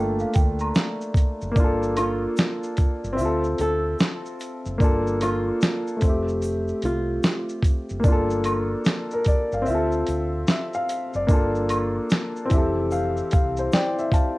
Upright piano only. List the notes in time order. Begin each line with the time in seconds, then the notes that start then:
Already playing: A3 A#3 D4 F4
1.52 A#3
1.56 D4
1.60 F4
1.64 A4
3.13 C4 E5
3.21 F4
3.25 A4
4.78 A#3 D4 F4
4.84 A4
5.97 A3
6.01 C4
6.05 E5
6.09 G4
8.00 A#3
8.04 D4
8.08 F4
8.12 A4
9.13 A#4
9.27 D5
9.54 F5
9.62 C4
9.66 E5
9.70 F4
9.75 A4
10.49 E5
10.75 F5
11.16 D5
11.27 A#3 D4
11.31 F4 A4
12.46 E3 C4
12.52 G4 E5
12.58 A4
12.92 F5
13.33 F5
13.59 C5
13.74 D5 G5
13.99 E5
14.13 F5 A5